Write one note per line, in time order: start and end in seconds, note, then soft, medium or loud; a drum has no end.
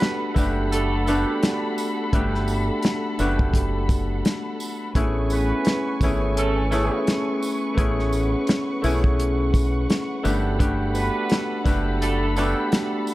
0.00 0.34 A3 loud
0.00 0.32 B3 medium
0.00 0.36 B3 medium
0.00 0.32 D4 medium
0.00 0.38 D4 medium
0.00 0.16 E4 medium
0.00 0.32 F#4 medium
0.00 0.36 F#4 medium
0.00 0.37 G4 loud
0.00 4.91 A4 medium
0.00 0.32 B4 loud
0.00 4.92 F#5 medium
0.00 4.91 B5 loud
0.00 snare loud
0.00 closed hi-hat medium
0.34 1.24 F#1 medium
0.34 0.87 A3 loud
0.34 0.87 B3 medium
0.34 0.87 D4 medium
0.34 0.87 F#4 medium
0.34 0.88 G4 loud
0.34 kick medium
0.34 tambourine medium
0.34 shaker medium
0.72 1.00 A3 loud
0.72 1.00 D4 medium
0.72 1.00 F#4 loud
0.72 1.00 A4 loud
0.72 closed hi-hat loud
1.06 1.35 A3 medium
1.06 2.13 A3 medium
1.06 2.14 B3 medium
1.06 1.35 D4 medium
1.06 2.13 D4 medium
1.06 1.35 F#4 medium
1.06 2.14 F#4 medium
1.06 2.14 G4 loud
1.06 1.35 A4 medium
1.06 closed hi-hat medium
1.06 tambourine medium
1.06 shaker medium
1.43 snare loud
1.43 snare medium
1.43 closed hi-hat medium
1.78 tambourine medium
1.78 shaker medium
2.13 2.69 G1 loud
2.13 3.19 A3 loud
2.13 3.19 B3 medium
2.13 3.18 D4 medium
2.13 3.20 F#4 medium
2.13 3.21 G4 loud
2.13 kick loud
2.13 closed hi-hat medium
2.35 snare soft
2.48 tambourine medium
2.48 shaker soft
2.83 snare loud
2.83 closed hi-hat medium
3.19 4.21 F#1 medium
3.19 4.95 A3 medium
3.19 4.95 B3 medium
3.19 5.01 D4 medium
3.19 5.64 F#4 medium
3.19 5.02 G4 loud
3.19 tambourine medium
3.19 shaker medium
3.39 kick loud
3.54 kick loud
3.54 closed hi-hat loud
3.89 kick loud
3.89 closed hi-hat soft
3.89 tambourine medium
3.89 shaker soft
4.25 snare loud
4.25 snare medium
4.25 closed hi-hat medium
4.60 tambourine medium
4.60 shaker medium
4.95 5.51 A1 loud
4.95 6.02 A3 medium
4.95 6.03 B3 medium
4.95 6.03 C#4 medium
4.95 6.03 E4 medium
4.95 6.03 G#4 loud
4.95 10.21 B4 medium
4.95 7.75 G#5 medium
4.95 10.21 C#6 medium
4.95 kick loud
4.95 closed hi-hat medium
5.30 5.98 B3 medium
5.30 5.98 E4 medium
5.30 5.98 G#4 medium
5.30 5.98 B4 medium
5.30 closed hi-hat soft
5.30 tambourine medium
5.30 shaker soft
5.65 snare loud
5.65 closed hi-hat medium
6.01 6.88 G#1 medium
6.01 6.53 A3 medium
6.01 6.53 B3 medium
6.01 6.53 C#4 medium
6.01 6.53 E4 medium
6.01 6.53 G#4 loud
6.01 kick medium
6.01 tambourine medium
6.01 shaker soft
6.37 6.65 A3 loud
6.37 6.65 C#4 medium
6.37 6.65 E4 medium
6.37 6.65 A4 loud
6.37 closed hi-hat loud
6.71 6.99 A3 medium
6.71 7.74 A3 medium
6.71 7.76 B3 medium
6.71 6.99 C#4 medium
6.71 7.79 C#4 medium
6.71 6.99 E4 medium
6.71 7.77 E4 medium
6.71 7.77 G#4 loud
6.71 6.99 A4 medium
6.71 closed hi-hat medium
6.71 tambourine medium
6.71 shaker soft
7.07 snare loud
7.07 snare medium
7.07 closed hi-hat medium
7.43 tambourine medium
7.43 shaker medium
7.74 8.34 A1 loud
7.74 8.81 A3 medium
7.74 8.83 B3 medium
7.74 8.83 E4 medium
7.74 8.84 G#4 loud
7.74 13.14 F#5 medium
7.74 kick loud
7.74 closed hi-hat medium
7.80 8.84 C#4 medium
7.99 snare soft
8.13 tambourine medium
8.13 shaker soft
8.47 snare loud
8.47 closed hi-hat medium
8.82 9.86 B1 medium
8.82 10.23 A3 loud
8.82 10.24 B3 medium
8.82 10.30 C#4 medium
8.82 11.45 E4 medium
8.82 10.29 G#4 loud
8.82 tambourine medium
8.82 shaker soft
9.04 kick loud
9.20 closed hi-hat loud
9.54 kick loud
9.54 closed hi-hat soft
9.54 tambourine medium
9.54 shaker soft
9.90 snare loud
9.90 snare medium
9.90 closed hi-hat medium
10.23 11.09 G1 loud
10.23 10.57 A3 medium
10.23 10.57 B3 medium
10.23 10.57 D4 medium
10.23 10.57 F#4 medium
10.23 10.57 G4 loud
10.23 13.14 A4 medium
10.23 13.14 B5 medium
10.23 tambourine medium
10.23 shaker medium
10.59 11.65 A3 loud
10.59 11.65 B3 medium
10.59 11.64 D4 medium
10.59 11.66 F#4 medium
10.59 11.67 G4 loud
10.59 kick loud
10.59 closed hi-hat medium
10.95 11.62 B3 medium
10.95 11.62 D4 medium
10.95 11.62 F#4 medium
10.95 11.62 B4 loud
10.95 closed hi-hat soft
10.95 tambourine medium
10.95 shaker soft
11.30 snare loud
11.30 closed hi-hat medium
11.64 12.53 F#1 medium
11.64 12.17 A3 loud
11.64 12.17 B3 medium
11.64 12.17 D4 medium
11.64 12.17 F#4 medium
11.64 12.17 G4 loud
11.64 kick loud
11.64 tambourine medium
11.64 shaker medium
12.01 12.29 A3 loud
12.01 12.30 D4 medium
12.01 12.29 F#4 loud
12.01 12.29 A4 loud
12.01 closed hi-hat loud
12.35 12.64 A3 medium
12.35 13.14 A3 loud
12.35 13.14 B3 medium
12.35 12.64 D4 medium
12.35 13.14 D4 medium
12.35 12.64 F#4 medium
12.35 13.14 F#4 loud
12.35 13.14 G4 loud
12.35 12.64 A4 medium
12.35 closed hi-hat soft
12.35 tambourine medium
12.35 shaker medium
12.72 snare loud
12.72 snare medium
12.72 closed hi-hat medium
13.07 tambourine medium
13.07 shaker medium